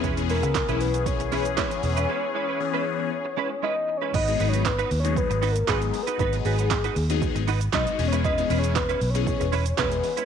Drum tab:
CC |----------------|----------------|x---------------|----------------|
HH |xxoxxxoxxxoxxxox|----------------|-xox-xox-xox-xox|-xox-xox-xox-xox|
SH |xxxxxxxxxxxxxxxx|----------------|xxxxxxxxxxxxxxxx|xxxxxxxxxxxxxxxx|
CP |----x-------x---|----------------|----x-------x---|----x-------x---|
SD |----o-------o---|----------------|----o-------o---|----o-------o---|
BD |o---o---o---o---|----------------|o---o---o---o---|o---o---o---o---|

CC |----------------|
HH |-xox-xox-xox-xox|
SH |xxxxxxxxxxxxxxxx|
CP |----x-------x---|
SD |----o-------o---|
BD |o---o---o---o---|